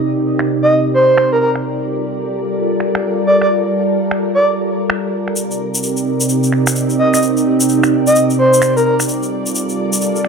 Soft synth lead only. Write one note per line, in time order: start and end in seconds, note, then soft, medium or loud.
0.62 0.73 D#5 medium
0.94 1.29 C5 medium
1.32 1.38 A#4 medium
1.41 1.50 A#4 medium
3.27 3.36 D5 medium
3.42 3.47 D5 medium
4.35 4.46 D5 medium
6.99 7.08 D#5 medium
7.14 7.19 D#5 medium
8.07 8.18 D#5 medium
8.39 8.74 C5 medium
8.77 8.82 A#4 medium
8.85 8.94 A#4 medium